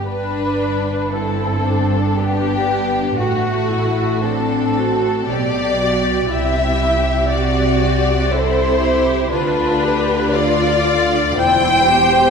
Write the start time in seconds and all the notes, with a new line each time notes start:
0.07 G1 G2 D4 B4
1.13 C4 E4 A4
1.66 D4
2.17 B3 G4
3.18 A1 A2 A3 F#4
3.69 E4
4.21 C4 D4 A4
4.77 F#4
5.29 B1 B2 G4 D5
5.80 F#4
6.30 C2 C3 E4 G4 E5
7.29 F#4 G4 D5
8.31 E4 A4 C5
8.81 G4
9.31 D2 D3 D4 F4 B4
9.83 G4
10.32 F4 D5
11.36 E1 E2 E4 C5 G5
11.86 G4